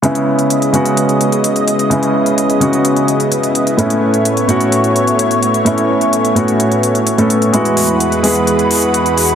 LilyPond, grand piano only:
\new Staff \with { instrumentName = "Grand piano" } { \time 4/4 \key cis \minor \tempo 4 = 128 <cis gis b cis' e'>4. <cis gis b cis' fis'>2~ <cis gis b cis' fis'>8 | <cis gis b cis' e'>4. <cis gis b cis' fis'>2~ <cis gis b cis' fis'>8 | <a, a b cis' e'>4. <a, a b cis' fis'>2~ <a, a b cis' fis'>8 | <a, a b cis' e'>4. <a, a b cis' fis'>4.~ <a, a b cis' fis'>16 <a, a b cis' a'>8. |
<gis b e' fis'>4. <gis b e' gis'>2~ <gis b e' gis'>8 | }